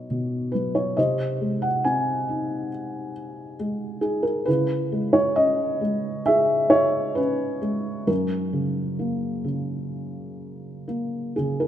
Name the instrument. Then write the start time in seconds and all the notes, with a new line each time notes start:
felt piano
Already playing: B2 F#3 C#5 D#5
0.10 B2
0.52 F#3 B4
0.75 C#5
0.97 C3 C5 D#5
1.41 G#3
1.62 F#5
1.84 C4 G#5
2.29 D#4
3.60 G#3
4.01 D#4 G#4
4.23 A#4
4.45 C#3 E4 B4
4.92 G#3
5.13 C#5
5.36 C#4 D#5
5.81 G#3
6.26 G#4 E5
6.70 C#5
7.15 C#4 B4
7.62 G#3
8.07 F#2 C#4 A#4
8.53 C#3
8.99 A#3
9.44 C#3
10.88 A#3
11.36 C#3 G#4
11.60 A#4